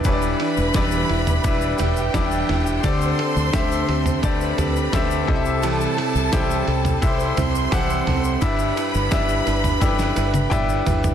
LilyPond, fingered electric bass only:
\new Staff \with { instrumentName = "Fingered electric bass" } { \clef bass \time 4/4 \key g \major \tempo 4 = 86 e,,8 r16 e,,16 e,,8 e,,8 e,,8 e,,8 e,,8 e,,8 | d,8 r16 d,16 d,8 d,8 d,8 d,8 d,8 c,8~ | c,8 r16 c,16 c,8 c,8 c,8 c,8 c,8 c,8 | g,,8 r16 g,,16 g,,8 g,,8 g,,8 g,,8 g,,8 g,,8 | }